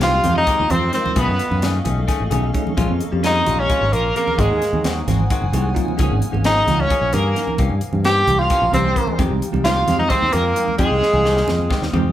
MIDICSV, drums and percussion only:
0, 0, Header, 1, 2, 480
1, 0, Start_track
1, 0, Key_signature, -4, "minor"
1, 0, Tempo, 458365
1, 1225, Time_signature, 7, 3, 24, 8
1, 12693, End_track
2, 0, Start_track
2, 0, Title_t, "Drums"
2, 9, Note_on_c, 9, 42, 76
2, 17, Note_on_c, 9, 38, 102
2, 114, Note_off_c, 9, 42, 0
2, 121, Note_off_c, 9, 38, 0
2, 248, Note_on_c, 9, 42, 56
2, 253, Note_on_c, 9, 64, 86
2, 353, Note_off_c, 9, 42, 0
2, 358, Note_off_c, 9, 64, 0
2, 490, Note_on_c, 9, 42, 76
2, 493, Note_on_c, 9, 36, 107
2, 594, Note_off_c, 9, 42, 0
2, 598, Note_off_c, 9, 36, 0
2, 733, Note_on_c, 9, 42, 56
2, 737, Note_on_c, 9, 64, 90
2, 838, Note_off_c, 9, 42, 0
2, 842, Note_off_c, 9, 64, 0
2, 861, Note_on_c, 9, 64, 28
2, 966, Note_off_c, 9, 64, 0
2, 972, Note_on_c, 9, 42, 54
2, 979, Note_on_c, 9, 38, 31
2, 1077, Note_off_c, 9, 42, 0
2, 1084, Note_off_c, 9, 38, 0
2, 1105, Note_on_c, 9, 64, 77
2, 1210, Note_off_c, 9, 64, 0
2, 1215, Note_on_c, 9, 42, 86
2, 1218, Note_on_c, 9, 36, 98
2, 1228, Note_on_c, 9, 63, 86
2, 1228, Note_on_c, 9, 64, 30
2, 1320, Note_off_c, 9, 42, 0
2, 1323, Note_off_c, 9, 36, 0
2, 1332, Note_off_c, 9, 63, 0
2, 1332, Note_off_c, 9, 64, 0
2, 1343, Note_on_c, 9, 64, 30
2, 1448, Note_off_c, 9, 64, 0
2, 1460, Note_on_c, 9, 42, 55
2, 1464, Note_on_c, 9, 64, 30
2, 1565, Note_off_c, 9, 42, 0
2, 1568, Note_off_c, 9, 64, 0
2, 1586, Note_on_c, 9, 64, 68
2, 1691, Note_off_c, 9, 64, 0
2, 1700, Note_on_c, 9, 42, 79
2, 1707, Note_on_c, 9, 38, 103
2, 1707, Note_on_c, 9, 64, 29
2, 1805, Note_off_c, 9, 42, 0
2, 1812, Note_off_c, 9, 38, 0
2, 1812, Note_off_c, 9, 64, 0
2, 1939, Note_on_c, 9, 42, 55
2, 1944, Note_on_c, 9, 64, 87
2, 2043, Note_off_c, 9, 42, 0
2, 2048, Note_off_c, 9, 64, 0
2, 2073, Note_on_c, 9, 63, 68
2, 2073, Note_on_c, 9, 64, 26
2, 2178, Note_off_c, 9, 63, 0
2, 2178, Note_off_c, 9, 64, 0
2, 2183, Note_on_c, 9, 36, 95
2, 2183, Note_on_c, 9, 42, 76
2, 2190, Note_on_c, 9, 38, 31
2, 2288, Note_off_c, 9, 36, 0
2, 2288, Note_off_c, 9, 42, 0
2, 2295, Note_off_c, 9, 38, 0
2, 2419, Note_on_c, 9, 42, 57
2, 2431, Note_on_c, 9, 64, 90
2, 2524, Note_off_c, 9, 42, 0
2, 2536, Note_off_c, 9, 64, 0
2, 2553, Note_on_c, 9, 64, 27
2, 2658, Note_off_c, 9, 64, 0
2, 2665, Note_on_c, 9, 36, 72
2, 2665, Note_on_c, 9, 42, 54
2, 2769, Note_off_c, 9, 42, 0
2, 2770, Note_off_c, 9, 36, 0
2, 2794, Note_on_c, 9, 64, 68
2, 2899, Note_off_c, 9, 64, 0
2, 2905, Note_on_c, 9, 63, 85
2, 2905, Note_on_c, 9, 64, 25
2, 2906, Note_on_c, 9, 42, 73
2, 2908, Note_on_c, 9, 36, 99
2, 3009, Note_off_c, 9, 63, 0
2, 3009, Note_off_c, 9, 64, 0
2, 3010, Note_off_c, 9, 42, 0
2, 3012, Note_off_c, 9, 36, 0
2, 3026, Note_on_c, 9, 64, 28
2, 3131, Note_off_c, 9, 64, 0
2, 3147, Note_on_c, 9, 42, 48
2, 3251, Note_off_c, 9, 42, 0
2, 3390, Note_on_c, 9, 42, 77
2, 3394, Note_on_c, 9, 64, 29
2, 3397, Note_on_c, 9, 38, 109
2, 3494, Note_off_c, 9, 42, 0
2, 3499, Note_off_c, 9, 64, 0
2, 3502, Note_off_c, 9, 38, 0
2, 3628, Note_on_c, 9, 64, 85
2, 3637, Note_on_c, 9, 42, 49
2, 3733, Note_off_c, 9, 64, 0
2, 3742, Note_off_c, 9, 42, 0
2, 3743, Note_on_c, 9, 63, 61
2, 3743, Note_on_c, 9, 64, 26
2, 3848, Note_off_c, 9, 63, 0
2, 3848, Note_off_c, 9, 64, 0
2, 3871, Note_on_c, 9, 36, 97
2, 3871, Note_on_c, 9, 42, 76
2, 3976, Note_off_c, 9, 36, 0
2, 3976, Note_off_c, 9, 42, 0
2, 4117, Note_on_c, 9, 42, 54
2, 4222, Note_off_c, 9, 42, 0
2, 4236, Note_on_c, 9, 64, 28
2, 4341, Note_off_c, 9, 64, 0
2, 4356, Note_on_c, 9, 42, 60
2, 4461, Note_off_c, 9, 42, 0
2, 4476, Note_on_c, 9, 64, 73
2, 4580, Note_off_c, 9, 64, 0
2, 4593, Note_on_c, 9, 63, 88
2, 4594, Note_on_c, 9, 36, 87
2, 4594, Note_on_c, 9, 42, 71
2, 4698, Note_off_c, 9, 36, 0
2, 4698, Note_off_c, 9, 42, 0
2, 4698, Note_off_c, 9, 63, 0
2, 4835, Note_on_c, 9, 42, 57
2, 4842, Note_on_c, 9, 38, 33
2, 4940, Note_off_c, 9, 42, 0
2, 4947, Note_off_c, 9, 38, 0
2, 4955, Note_on_c, 9, 64, 76
2, 5060, Note_off_c, 9, 64, 0
2, 5073, Note_on_c, 9, 42, 80
2, 5075, Note_on_c, 9, 64, 29
2, 5080, Note_on_c, 9, 38, 107
2, 5177, Note_off_c, 9, 42, 0
2, 5180, Note_off_c, 9, 64, 0
2, 5185, Note_off_c, 9, 38, 0
2, 5318, Note_on_c, 9, 42, 55
2, 5318, Note_on_c, 9, 64, 92
2, 5325, Note_on_c, 9, 38, 33
2, 5423, Note_off_c, 9, 42, 0
2, 5423, Note_off_c, 9, 64, 0
2, 5430, Note_off_c, 9, 38, 0
2, 5443, Note_on_c, 9, 63, 66
2, 5548, Note_off_c, 9, 63, 0
2, 5554, Note_on_c, 9, 42, 84
2, 5555, Note_on_c, 9, 64, 30
2, 5556, Note_on_c, 9, 36, 101
2, 5659, Note_off_c, 9, 42, 0
2, 5660, Note_off_c, 9, 36, 0
2, 5660, Note_off_c, 9, 64, 0
2, 5676, Note_on_c, 9, 64, 26
2, 5780, Note_off_c, 9, 64, 0
2, 5795, Note_on_c, 9, 42, 60
2, 5800, Note_on_c, 9, 64, 87
2, 5900, Note_off_c, 9, 42, 0
2, 5905, Note_off_c, 9, 64, 0
2, 6035, Note_on_c, 9, 36, 71
2, 6036, Note_on_c, 9, 42, 58
2, 6140, Note_off_c, 9, 36, 0
2, 6141, Note_off_c, 9, 42, 0
2, 6160, Note_on_c, 9, 64, 69
2, 6265, Note_off_c, 9, 64, 0
2, 6269, Note_on_c, 9, 42, 75
2, 6275, Note_on_c, 9, 36, 96
2, 6290, Note_on_c, 9, 63, 99
2, 6290, Note_on_c, 9, 64, 30
2, 6374, Note_off_c, 9, 42, 0
2, 6379, Note_off_c, 9, 36, 0
2, 6394, Note_off_c, 9, 63, 0
2, 6394, Note_off_c, 9, 64, 0
2, 6411, Note_on_c, 9, 64, 30
2, 6512, Note_on_c, 9, 42, 54
2, 6515, Note_off_c, 9, 64, 0
2, 6523, Note_on_c, 9, 64, 31
2, 6617, Note_off_c, 9, 42, 0
2, 6627, Note_off_c, 9, 64, 0
2, 6642, Note_on_c, 9, 64, 81
2, 6747, Note_off_c, 9, 64, 0
2, 6748, Note_on_c, 9, 42, 87
2, 6755, Note_on_c, 9, 38, 107
2, 6762, Note_on_c, 9, 64, 28
2, 6853, Note_off_c, 9, 42, 0
2, 6860, Note_off_c, 9, 38, 0
2, 6867, Note_off_c, 9, 64, 0
2, 6991, Note_on_c, 9, 42, 58
2, 6998, Note_on_c, 9, 38, 31
2, 6999, Note_on_c, 9, 64, 85
2, 7096, Note_off_c, 9, 42, 0
2, 7103, Note_off_c, 9, 38, 0
2, 7104, Note_off_c, 9, 64, 0
2, 7123, Note_on_c, 9, 63, 69
2, 7123, Note_on_c, 9, 64, 27
2, 7227, Note_off_c, 9, 63, 0
2, 7227, Note_off_c, 9, 64, 0
2, 7229, Note_on_c, 9, 42, 81
2, 7231, Note_on_c, 9, 36, 104
2, 7334, Note_off_c, 9, 42, 0
2, 7335, Note_off_c, 9, 36, 0
2, 7463, Note_on_c, 9, 42, 57
2, 7471, Note_on_c, 9, 38, 32
2, 7475, Note_on_c, 9, 64, 93
2, 7568, Note_off_c, 9, 42, 0
2, 7575, Note_off_c, 9, 38, 0
2, 7580, Note_off_c, 9, 64, 0
2, 7592, Note_on_c, 9, 64, 26
2, 7697, Note_off_c, 9, 64, 0
2, 7710, Note_on_c, 9, 42, 50
2, 7718, Note_on_c, 9, 38, 31
2, 7815, Note_off_c, 9, 42, 0
2, 7822, Note_off_c, 9, 38, 0
2, 7826, Note_on_c, 9, 64, 67
2, 7931, Note_off_c, 9, 64, 0
2, 7940, Note_on_c, 9, 63, 79
2, 7940, Note_on_c, 9, 64, 26
2, 7942, Note_on_c, 9, 42, 64
2, 7947, Note_on_c, 9, 36, 94
2, 8044, Note_off_c, 9, 63, 0
2, 8044, Note_off_c, 9, 64, 0
2, 8047, Note_off_c, 9, 42, 0
2, 8052, Note_off_c, 9, 36, 0
2, 8061, Note_on_c, 9, 64, 30
2, 8165, Note_off_c, 9, 64, 0
2, 8180, Note_on_c, 9, 42, 54
2, 8187, Note_on_c, 9, 64, 28
2, 8284, Note_off_c, 9, 42, 0
2, 8292, Note_off_c, 9, 64, 0
2, 8301, Note_on_c, 9, 64, 73
2, 8406, Note_off_c, 9, 64, 0
2, 8425, Note_on_c, 9, 42, 78
2, 8429, Note_on_c, 9, 64, 30
2, 8432, Note_on_c, 9, 38, 110
2, 8530, Note_off_c, 9, 42, 0
2, 8534, Note_off_c, 9, 64, 0
2, 8537, Note_off_c, 9, 38, 0
2, 8665, Note_on_c, 9, 42, 55
2, 8666, Note_on_c, 9, 64, 87
2, 8770, Note_off_c, 9, 42, 0
2, 8771, Note_off_c, 9, 64, 0
2, 8785, Note_on_c, 9, 63, 63
2, 8785, Note_on_c, 9, 64, 25
2, 8890, Note_off_c, 9, 63, 0
2, 8890, Note_off_c, 9, 64, 0
2, 8901, Note_on_c, 9, 42, 81
2, 8905, Note_on_c, 9, 36, 98
2, 9006, Note_off_c, 9, 42, 0
2, 9010, Note_off_c, 9, 36, 0
2, 9147, Note_on_c, 9, 64, 94
2, 9148, Note_on_c, 9, 42, 56
2, 9251, Note_off_c, 9, 64, 0
2, 9253, Note_off_c, 9, 42, 0
2, 9265, Note_on_c, 9, 64, 28
2, 9370, Note_off_c, 9, 64, 0
2, 9385, Note_on_c, 9, 36, 72
2, 9388, Note_on_c, 9, 42, 61
2, 9490, Note_off_c, 9, 36, 0
2, 9493, Note_off_c, 9, 42, 0
2, 9501, Note_on_c, 9, 64, 69
2, 9606, Note_off_c, 9, 64, 0
2, 9622, Note_on_c, 9, 42, 78
2, 9622, Note_on_c, 9, 63, 90
2, 9622, Note_on_c, 9, 64, 28
2, 9623, Note_on_c, 9, 36, 100
2, 9726, Note_off_c, 9, 42, 0
2, 9726, Note_off_c, 9, 63, 0
2, 9726, Note_off_c, 9, 64, 0
2, 9727, Note_off_c, 9, 36, 0
2, 9739, Note_on_c, 9, 64, 29
2, 9844, Note_off_c, 9, 64, 0
2, 9864, Note_on_c, 9, 64, 26
2, 9867, Note_on_c, 9, 42, 57
2, 9969, Note_off_c, 9, 64, 0
2, 9972, Note_off_c, 9, 42, 0
2, 9988, Note_on_c, 9, 64, 79
2, 10093, Note_off_c, 9, 64, 0
2, 10104, Note_on_c, 9, 42, 83
2, 10111, Note_on_c, 9, 38, 113
2, 10116, Note_on_c, 9, 64, 28
2, 10208, Note_off_c, 9, 42, 0
2, 10216, Note_off_c, 9, 38, 0
2, 10221, Note_off_c, 9, 64, 0
2, 10343, Note_on_c, 9, 42, 60
2, 10343, Note_on_c, 9, 64, 76
2, 10350, Note_on_c, 9, 38, 31
2, 10448, Note_off_c, 9, 42, 0
2, 10448, Note_off_c, 9, 64, 0
2, 10455, Note_off_c, 9, 38, 0
2, 10469, Note_on_c, 9, 63, 62
2, 10469, Note_on_c, 9, 64, 23
2, 10573, Note_off_c, 9, 63, 0
2, 10573, Note_off_c, 9, 64, 0
2, 10576, Note_on_c, 9, 42, 78
2, 10580, Note_on_c, 9, 36, 96
2, 10584, Note_on_c, 9, 38, 35
2, 10681, Note_off_c, 9, 42, 0
2, 10684, Note_off_c, 9, 36, 0
2, 10688, Note_off_c, 9, 38, 0
2, 10814, Note_on_c, 9, 42, 58
2, 10821, Note_on_c, 9, 38, 33
2, 10824, Note_on_c, 9, 64, 77
2, 10919, Note_off_c, 9, 42, 0
2, 10926, Note_off_c, 9, 38, 0
2, 10928, Note_off_c, 9, 64, 0
2, 11060, Note_on_c, 9, 42, 58
2, 11165, Note_off_c, 9, 42, 0
2, 11181, Note_on_c, 9, 64, 55
2, 11286, Note_off_c, 9, 64, 0
2, 11294, Note_on_c, 9, 42, 72
2, 11300, Note_on_c, 9, 36, 94
2, 11305, Note_on_c, 9, 63, 70
2, 11399, Note_off_c, 9, 42, 0
2, 11405, Note_off_c, 9, 36, 0
2, 11410, Note_off_c, 9, 63, 0
2, 11545, Note_on_c, 9, 64, 23
2, 11547, Note_on_c, 9, 38, 49
2, 11649, Note_off_c, 9, 64, 0
2, 11652, Note_off_c, 9, 38, 0
2, 11664, Note_on_c, 9, 64, 65
2, 11769, Note_off_c, 9, 64, 0
2, 11785, Note_on_c, 9, 64, 24
2, 11786, Note_on_c, 9, 38, 71
2, 11889, Note_off_c, 9, 64, 0
2, 11890, Note_off_c, 9, 38, 0
2, 11906, Note_on_c, 9, 38, 59
2, 12011, Note_off_c, 9, 38, 0
2, 12018, Note_on_c, 9, 64, 82
2, 12025, Note_on_c, 9, 38, 64
2, 12123, Note_off_c, 9, 64, 0
2, 12130, Note_off_c, 9, 38, 0
2, 12136, Note_on_c, 9, 63, 60
2, 12136, Note_on_c, 9, 64, 22
2, 12241, Note_off_c, 9, 63, 0
2, 12241, Note_off_c, 9, 64, 0
2, 12258, Note_on_c, 9, 36, 108
2, 12266, Note_on_c, 9, 38, 74
2, 12363, Note_off_c, 9, 36, 0
2, 12371, Note_off_c, 9, 38, 0
2, 12383, Note_on_c, 9, 38, 70
2, 12387, Note_on_c, 9, 64, 25
2, 12488, Note_off_c, 9, 38, 0
2, 12492, Note_off_c, 9, 64, 0
2, 12499, Note_on_c, 9, 45, 91
2, 12502, Note_on_c, 9, 64, 88
2, 12604, Note_off_c, 9, 45, 0
2, 12607, Note_off_c, 9, 64, 0
2, 12693, End_track
0, 0, End_of_file